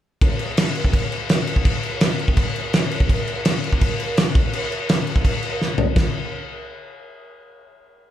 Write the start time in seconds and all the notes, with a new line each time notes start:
0.21 kick, crash
0.39 crash
0.57 snare, crash
0.75 crash
0.85 kick
0.93 kick, crash
1.12 crash
1.29 snare, crash
1.47 crash
1.56 kick
1.65 kick, crash
1.83 crash
2.01 snare, crash
2.19 crash
2.28 kick
2.37 kick, crash
2.56 crash
2.73 snare, crash
2.91 crash
3.00 kick
3.09 kick, crash
3.27 crash
3.45 snare, crash
3.64 crash
3.73 kick
3.81 kick, crash
4.00 crash
4.17 snare, crash
4.35 kick, crash
4.53 crash
4.72 crash
4.89 snare, crash
5.07 crash
5.16 kick
5.25 kick, crash
5.42 crash
5.62 snare
5.78 floor tom
5.96 kick, snare, crash